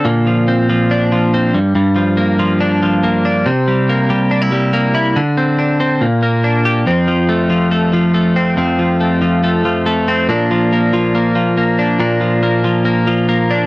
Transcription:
X:1
M:4/4
L:1/16
Q:1/4=140
K:Bblyd
V:1 name="Clean electric guitar"
B,,2 F,2 C2 F,2 D2 F,2 C2 G,,2 | G,,2 F,2 B,2 F,2 D2 F,2 B,2 D2 | C,2 G,2 B,2 G,2 D E G,2 B,2 E2 | D,2 C2 D2 C2 B,,2 B,2 D2 G2 |
[K:Fmix] [F,,C]2 F,2 A,2 F,2 A,2 F,2 A,2 C2 | [F,,C]2 F,2 A,2 F,2 A,2 F,2 A,2 C2 | [B,,D]2 F,2 B,2 F,2 B,2 F,2 B,2 D2 | [B,,D]2 F,2 B,2 F,2 B,2 F,2 B,2 D2 |]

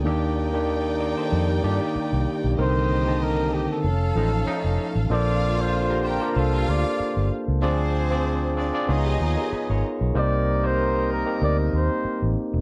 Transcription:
X:1
M:4/4
L:1/16
Q:"Swing 16ths" 1/4=95
K:Bb
V:1 name="Flugelhorn"
z16 | c4 B2 G A6- A z2 | d3 c3 B2 A2 d4 z2 | z16 |
d3 c3 B2 d2 c4 z2 |]
V:2 name="Clean electric guitar"
z6 [Bd] [Ac]2 [GB] [FA] [EG]4- [EG] | z16 | z4 z [GB] [Ac] [Bd] [Ac] [GB]6 z | z8 z [EG] [F_A] [GB] [A_c] [B_d]3 |
z16 |]
V:3 name="Violin section"
[Edg]16 | [B,Ge]8 [^CAf]8 | [Ff]6 [Gg]2 [Ff]6 z2 | [Cc]6 [Dd]2 [Ee]6 z2 |
z16 |]
V:4 name="Tine electric piano"
[E,B,DG]2 z [E,B,DG]4- [E,B,DG] z2 [E,B,Gd]4 z2 | [D,E,CB]2 z [D,E,Ca]4- [D,E,Ca] z2 [F,^CEA]4 z2 | [B,DFAc]2 z [B,DFAcd]3 z [B,DFca]6 z3 | [CDF_Ad]2 z [CDFAd]2 z [CDFAd] [CDFAd] [_CEFA_d]6 z2 |
[B,CEGc]2 z [B,CEGc]3 z [B,CEGB]6 z3 |]
V:5 name="Horn section"
z16 | z8 z2 [A,,^G,E] z [A,,A,E]3 z | [D,CF]12- [D,CF]2 z2 | [F,D_A]6 z2 [F,EA]6 z2 |
[G,EB]12- [G,EB]2 z2 |]
V:6 name="Fingered electric bass" clef=bass
E,,6- E,, z F,,2 G,, z2 C,, z _C,, | C,,6- C,, z F,,,2 A,,,2 z F,,, z A,,, | B,,,6- B,,, z C,,2 D,, z2 G,,, z _D,, | D,,6- D,, z _D,,2 E,, z2 _A,,, z _C,, |
C,,6- C,, z D,,2 E,, z2 A,,, z =E,,, |]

